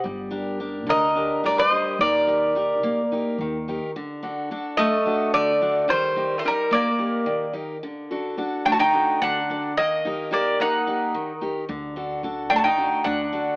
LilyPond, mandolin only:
\new Staff \with { instrumentName = "Mandolin" } { \time 7/8 \tempo 4 = 108 r4. bes'4 bes'16 c''8. | bes'2~ bes'8 r4 | r4. a4 a4 | g8.~ g32 a32 g8 bes4. r8 |
r4. d'32 fis'32 ees'8. d'4 | bes4 bes8 ees'4. r8 | r4. d'32 fis'32 ees'8. d'4 | }